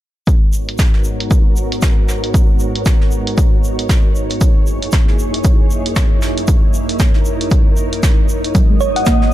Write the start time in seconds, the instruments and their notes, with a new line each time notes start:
0.27 string machine G#2 B3 D#4 F#4 A#4 C#5, kick, closed hi-hat, shaker
0.53 shaker
0.69 closed hi-hat
0.79 kick, snare, closed hi-hat, shaker
0.94 snare
1.04 shaker
1.20 closed hi-hat
1.31 kick, closed hi-hat, shaker
1.56 shaker
1.72 closed hi-hat
1.82 kick, snare, closed hi-hat, shaker
2.08 snare, shaker
2.23 closed hi-hat
2.34 kick, closed hi-hat, shaker
2.60 shaker
2.75 closed hi-hat
2.86 kick, snare, closed hi-hat, shaker
3.01 snare
3.11 shaker
3.27 closed hi-hat
3.38 kick, closed hi-hat, shaker
3.64 shaker
3.79 closed hi-hat
3.89 kick, snare, closed hi-hat, shaker
4.15 shaker
4.30 closed hi-hat
4.41 string machine F#2 A#3 E4 G#4, kick, closed hi-hat, shaker
4.67 shaker
4.82 closed hi-hat
4.92 kick, snare, closed hi-hat, shaker
5.08 snare
5.19 shaker
5.34 closed hi-hat
5.44 kick, closed hi-hat, shaker
5.71 shaker
5.86 closed hi-hat
5.96 kick, snare, closed hi-hat, shaker
6.22 snare, shaker
6.37 closed hi-hat
6.48 string machine A#4, kick, closed hi-hat, shaker
6.74 shaker
6.89 closed hi-hat
6.99 kick, snare, closed hi-hat, shaker
7.14 snare
7.25 shaker
7.41 closed hi-hat
7.51 kick, closed hi-hat, shaker
7.77 shaker
7.93 closed hi-hat
8.03 kick, snare, closed hi-hat, shaker
8.29 shaker
8.44 closed hi-hat
8.55 string machine G#2 B3 F#4 A#4, synth arpeggio sound F#3, analog synth pad D#5 D#6, kick, closed hi-hat, shaker
8.70 synth arpeggio sound G#3
8.81 synth pluck C#5, shaker
8.96 synth pluck F#5, closed hi-hat
9.06 synth arpeggio sound A#3, kick, snare, closed hi-hat, shaker
9.22 snare